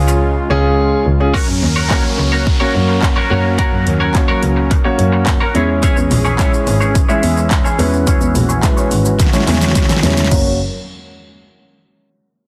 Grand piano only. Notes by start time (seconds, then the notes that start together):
Already playing: C#4 F4 G#4
0.50 C#4 F4 G#4
1.20 C#4 F4 G#4
1.90 A#3 C#4 F#4 C#5
2.60 A#3 C#4 F#4 C#5
3.30 A#3 C#4 F#4 C#5
4.14 A#3 C#4 F#4 C#5
4.85 A#3 C#4 F#4 C#5
5.55 G#3 C#4 E4 C#5
6.39 G#3 C#4 E4 C#5
7.09 G#3 C#4 E4 E5
7.79 G#3 C#4 E4 B4
8.63 G#3 C#4 E4 B4
9.33 G#3 C#4 E4 C#5
10.03 G#3 C#4 E4 C#5
10.31 A#3 C#4 F#4 C#5